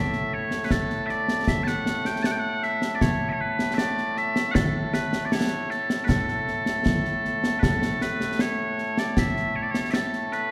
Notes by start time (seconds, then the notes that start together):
Already playing: A2 A3 E5
0.13 snare
0.33 C#5
0.51 snare
0.64 B4
0.70 A4, concert bass drum, snare
0.90 snare
1.06 D5 E5, snare
1.28 snare
1.47 E5, concert bass drum, snare
1.64 F#5 A5, snare
1.86 snare
2.05 G5, snare
2.23 F#5 A5, snare
2.32 G5
2.39 F#5
2.63 E5, snare
2.82 snare
2.95 D5
3.01 C#5, concert bass drum, snare
3.29 C#5 E5
3.40 B4
3.59 snare
3.74 D5 E5, snare
3.97 snare
4.17 E5, snare
4.36 snare
4.51 A4 F#5, concert bass drum, snare
4.94 B4, snare
5.13 snare
5.25 D5
5.32 C#5, snare
5.70 A4, snare
5.90 snare
6.04 B4
6.09 A4, concert bass drum, snare
6.28 snare
6.48 snare
6.66 snare
6.86 concert bass drum, snare
7.05 snare
7.25 snare
7.44 snare
7.59 B4, concert bass drum, snare
7.64 A4
7.82 snare
8.01 B4, snare
8.21 snare
8.39 C#5, snare
8.78 snare
8.97 D5, snare
9.17 E5, concert bass drum, snare
9.36 snare
9.56 C#5
9.62 D5
9.71 C#5, snare
9.91 A4 E5, snare
10.13 snare
10.32 B4, snare